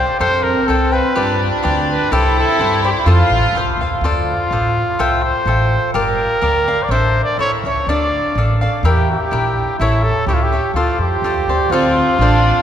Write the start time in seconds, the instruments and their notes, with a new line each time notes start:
Already playing: trumpet C5, cavaquinho C5 F5 G5
0.20 upright bass F2, violin section C4, cavaquinho A4 C5 F5 G5, trumpet C5
0.43 trumpet A#4
0.67 upright bass C2, trumpet A4, cavaquinho A4 C5 F5 G5
0.92 trumpet B4, cavaquinho C5 F5 G5
1.15 upright bass G2, violin section D4, cavaquinho F4 G4 B4 D5
1.63 upright bass D2, cavaquinho F4 G4 B4 D5
1.89 trumpet B4
2.11 upright bass C2, violin section E4, cavaquinho E4 G4 C5 D5, trumpet A4
2.39 trumpet A4
2.59 upright bass G2, cavaquinho E4 G4 C5 D5
2.84 cavaquinho G4 C5 D5, trumpet G4
3.00 trumpet F4
3.06 upright bass F2, cavaquinho F4 A4 C5 F5, violin section F4
3.30 upright bass A1
3.52 upright bass C2, cavaquinho F4 A4
3.57 cavaquinho C5 F5
3.77 upright bass D2, cavaquinho F5
3.83 cavaquinho A4 C5
4.01 upright bass D2, cavaquinho F4 A4 C5 D5
4.05 trumpet F4
4.51 upright bass A1, cavaquinho F4 A4 C5 D5
4.99 upright bass C2, cavaquinho A4 C5 E5 G5
5.24 trumpet C5
5.46 upright bass A1, cavaquinho A4 C5 E5 G5
5.94 upright bass G1, cavaquinho G4 A#4 D5 F5, trumpet A#4
6.42 upright bass D2, cavaquinho G4 A#4 D5 F5
6.68 cavaquinho A#4 D5 F5
6.84 trumpet D5
6.89 upright bass A1, cavaquinho D4 A4 D5 E5, trumpet C5
7.24 trumpet D5
7.38 upright bass A1, cavaquinho E4 A4 C#5 E5, trumpet C#5
7.63 upright bass C#2, cavaquinho A4 C#5 E5, trumpet C#5
7.87 upright bass D2, cavaquinho D4 A4 D5 F5, trumpet D5
8.35 upright bass A1, cavaquinho D4 A4 D5 F5
8.61 cavaquinho A4 D5 F5
8.83 upright bass E2, cavaquinho E4 A#4 E5 G5, trumpet G4
9.11 trumpet G4
9.31 upright bass A#1, cavaquinho E4 A#4 E5 G5
9.79 upright bass A1, trumpet E4, cavaquinho E4 A4 C#5 E5
10.03 trumpet A4
10.26 upright bass C#2, cavaquinho E4 A4 C#5 E5, trumpet G4
10.34 trumpet F4
10.43 trumpet G4
10.52 cavaquinho A4 C#5 E5
10.74 upright bass D2, trumpet F4, cavaquinho F4 A4 C5 D5
10.98 upright bass F2, trumpet G4
11.22 upright bass E2, cavaquinho F4 A4 C5 D5
11.47 upright bass D2, cavaquinho A4 C5 D5
11.70 upright bass D2, violin section C4, trumpet F4, cavaquinho F4 A4 C5 D5
12.19 upright bass A1, violin section D4, cavaquinho F4 A4 C5 D5